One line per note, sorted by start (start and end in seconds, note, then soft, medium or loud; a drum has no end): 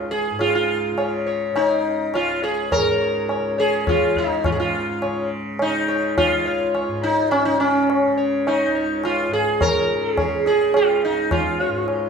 0.00 2.13 C#2 medium
0.00 0.31 G#2 medium
0.00 0.92 C#3 soft
0.00 0.11 F4 medium
0.11 0.40 G#4 medium
0.31 2.75 G#2 medium
0.39 0.54 F4 medium
0.39 tabla na medium
0.55 1.38 F4 medium
0.92 1.53 C#3 medium
0.98 1.25 C#5 soft
0.98 tabla na medium
1.27 1.54 C#5 soft
1.53 3.39 C#3 medium
1.53 2.16 D#4 medium
1.53 1.82 C#5 soft
1.53 tabla na medium
2.13 6.27 C#2 medium
2.13 2.43 F4 medium
2.13 2.41 C#5 soft
2.13 tabla na medium
2.43 2.73 G#4 medium
2.43 2.70 C#5 soft
2.71 3.58 A#4 medium
2.71 2.98 C#5 soft
2.71 tabla na medium
2.71 tabla ge medium
2.76 4.44 G#2 medium
3.01 3.27 C#5 soft
3.29 3.57 C#5 soft
3.29 tabla na medium
3.39 3.96 C#3 medium
3.58 3.89 G#4 medium
3.58 3.85 C#5 soft
3.87 4.18 F4 medium
3.87 4.14 C#5 soft
3.87 tabla na medium
3.87 tabla ge medium
3.96 5.05 C#3 soft
4.16 4.44 D#4 medium
4.16 4.43 C#5 soft
4.16 tabla ge soft
4.44 6.88 G#2 medium
4.44 4.52 F4 medium
4.44 tabla na medium
4.44 tabla ge medium
4.52 4.59 G#4 medium
4.60 5.28 F4 medium
5.02 5.66 C#3 medium
5.02 5.29 C#5 soft
5.02 tabla na medium
5.59 6.17 D#4 medium
5.59 tabla na medium
5.66 7.47 C#3 medium
5.88 6.15 C#5 soft
5.88 tabla na medium
6.18 7.06 F4 loud
6.18 tabla na medium
6.18 tabla ge medium
6.27 8.68 C#2 medium
6.46 6.73 C#5 soft
6.75 7.01 C#5 soft
6.75 tabla na medium
6.88 9.28 G#2 medium
7.03 7.31 D#4 medium
7.31 7.45 C#4 medium
7.31 tabla na medium
7.45 8.08 C#3 medium
7.45 7.59 D#4 medium
7.60 8.14 C#4 medium
7.60 tabla na medium
7.90 tabla na medium
8.08 9.88 C#3 medium
8.18 8.44 C#5 soft
8.47 9.04 D#4 medium
8.47 tabla na medium
8.68 11.08 C#2 medium
8.75 9.02 C#5 soft
9.04 9.33 F4 medium
9.04 tabla na medium
9.28 11.68 G#2 medium
9.33 9.62 G#4 medium
9.61 10.08 A#4 loud
9.61 tabla na medium
9.61 tabla ge medium
9.88 10.47 C#3 medium
10.08 10.20 A4 loud
10.18 10.47 G#4 loud
10.18 10.45 C#5 soft
10.18 tabla na medium
10.18 tabla ge medium
10.46 12.09 C#3 medium
10.46 10.76 G#4 medium
10.46 tabla te medium
10.74 11.04 F4 medium
10.74 tabla na medium
11.05 11.31 D#4 medium
11.09 12.09 C#2 medium
11.31 12.09 F4 medium
11.31 tabla na medium
11.31 tabla ge medium
11.60 11.86 C#5 soft
11.68 12.09 G#2 medium
11.88 tabla na medium